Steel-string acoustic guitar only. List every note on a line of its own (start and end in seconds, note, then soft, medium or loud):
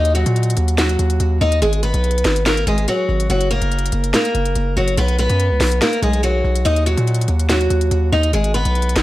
0.00 0.11 D#4 medium
0.00 0.12 D#5 medium
0.15 0.74 F#3 medium
0.15 0.74 F#4 medium
0.78 1.38 F#3 medium
0.78 1.37 F#4 medium
1.41 1.59 D#4 medium
1.41 1.59 D#5 medium
1.62 1.80 G#3 medium
1.62 1.80 G#4 medium
1.83 2.42 B3 medium
1.83 2.42 B4 medium
2.46 2.64 A#3 medium
2.46 2.63 A#4 medium
2.67 2.85 G#3 medium
2.67 2.84 G#4 medium
2.88 3.28 F#3 medium
2.88 3.27 F#4 medium
3.30 3.48 F#3 medium
3.30 3.47 F#4 medium
3.51 4.10 A#3 medium
3.51 4.10 A#4 medium
4.14 4.74 A#3 medium
4.14 4.73 A#4 medium
4.77 4.95 F#3 medium
4.77 4.94 F#4 medium
4.98 5.16 B3 medium
4.98 5.15 B4 medium
5.19 5.78 B3 medium
5.19 5.78 B4 medium
5.82 6.00 A#3 medium
5.82 5.99 A#4 medium
6.02 6.21 G#3 medium
6.02 6.20 G#4 medium
6.23 6.63 F#3 medium
6.23 6.63 F#4 medium
6.65 6.83 D#4 medium
6.65 6.83 D#5 medium
6.86 7.46 F#3 medium
6.86 7.45 F#4 medium
7.49 8.09 F#3 medium
7.49 8.09 F#4 medium
8.12 8.30 D#4 medium
8.12 8.30 D#5 medium
8.33 8.51 G#3 medium
8.33 8.51 G#4 medium
8.54 9.03 B3 medium
8.54 9.03 B4 medium